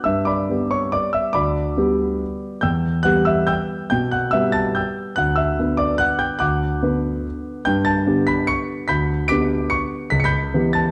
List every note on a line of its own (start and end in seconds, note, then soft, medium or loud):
0.04 0.48 G2 medium
0.04 0.26 E5 medium
0.04 0.26 E6 medium
0.25 0.68 D5 medium
0.25 0.68 B5 medium
0.25 0.70 D6 medium
0.50 1.31 G3 soft
0.50 1.32 B3 soft
0.50 1.32 G4 soft
0.71 0.91 C#5 medium
0.71 0.93 C#6 medium
0.92 1.13 D5 medium
0.92 1.14 D6 medium
1.13 1.34 E5 medium
1.13 1.34 E6 medium
1.33 1.76 D2 medium
1.33 2.59 D5 medium
1.33 2.59 B5 medium
1.33 2.62 D6 medium
1.77 2.59 G3 soft
1.77 2.60 B3 soft
1.77 2.60 G4 soft
2.61 3.04 E2 soft
2.61 3.02 G5 medium
2.61 3.02 E6 medium
2.61 3.04 G6 medium
3.03 3.87 G3 soft
3.03 3.87 B3 soft
3.03 3.88 G4 soft
3.03 3.25 F#5 medium
3.03 3.26 F#6 medium
3.25 3.48 E5 medium
3.25 3.46 E6 medium
3.47 3.88 G5 medium
3.47 3.88 E6 medium
3.47 3.88 G6 medium
3.90 4.32 B2 medium
3.90 4.10 G5 medium
3.90 4.11 G6 medium
4.11 4.32 F#5 medium
4.11 4.33 F#6 medium
4.31 5.13 G3 soft
4.31 5.14 B3 soft
4.31 5.14 G4 soft
4.31 4.53 E5 medium
4.31 4.54 E6 medium
4.52 4.74 A5 medium
4.52 4.75 A6 medium
4.75 5.14 G5 medium
4.75 5.15 E6 medium
4.75 5.17 G6 medium
5.16 5.58 D2 medium
5.16 5.36 F#5 medium
5.16 5.37 F#6 medium
5.36 5.76 E5 medium
5.36 5.78 E6 medium
5.59 6.38 D3 soft
5.59 6.38 B3 soft
5.59 6.38 B4 soft
5.77 5.98 D5 medium
5.77 5.99 D6 medium
5.98 6.19 F#5 medium
5.98 6.20 F#6 medium
6.19 6.39 G5 medium
6.19 6.40 G6 medium
6.39 6.81 D2 medium
6.39 7.62 F#5 medium
6.39 7.62 D6 medium
6.39 7.65 F#6 medium
6.83 7.62 D3 soft
6.83 7.62 B3 soft
6.83 7.63 B4 soft
7.65 8.06 G2 medium
7.65 7.84 G5 medium
7.65 7.86 G6 medium
7.85 8.24 A5 medium
7.85 8.26 A6 medium
8.07 8.85 D3 soft
8.07 8.85 B3 soft
8.07 8.85 G4 medium
8.27 8.47 B5 medium
8.27 8.48 B6 medium
8.47 8.86 C#6 medium
8.47 8.88 C#7 loud
8.88 9.29 D2 medium
8.88 9.27 B5 medium
8.88 9.27 G6 medium
8.88 9.27 B6 medium
9.28 10.08 D3 soft
9.28 10.08 B3 soft
9.28 10.08 G4 soft
9.28 9.67 D6 medium
9.28 9.68 B6 medium
9.28 9.70 D7 loud
9.70 10.09 C#6 medium
9.70 10.11 C#7 medium
10.10 10.52 C#2 medium
10.10 10.18 B6 medium
10.20 10.26 C#7 medium
10.24 10.71 B5 medium
10.24 10.71 G6 medium
10.24 10.74 B6 medium
10.54 10.91 E3 soft
10.54 10.91 B3 soft
10.54 10.91 G4 soft
10.73 10.91 A5 medium
10.73 10.91 A6 medium